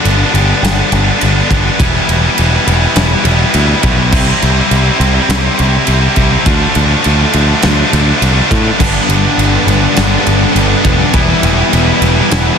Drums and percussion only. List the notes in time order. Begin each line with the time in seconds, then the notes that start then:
0.05 ride
0.35 ride
0.65 snare, ride
0.92 ride
1.21 ride
1.51 kick, ride
1.80 kick, ride
2.09 ride
2.38 ride
2.68 ride
2.96 snare, ride
3.25 ride
3.54 ride
3.83 kick, ride
4.12 kick, crash
4.42 ride
4.71 ride
5.01 ride
5.30 snare, ride
5.59 ride
5.87 ride
6.16 kick, ride
6.46 kick, ride
6.75 ride
7.04 ride
7.33 ride
7.62 snare, ride
7.93 ride
8.22 ride
8.51 kick, ride
8.80 kick, crash
9.10 ride
9.39 ride
9.68 ride
9.97 snare, ride
10.27 ride
10.56 ride
10.85 kick, ride
11.14 kick, ride
11.43 ride
11.73 ride
12.02 ride
12.31 snare, ride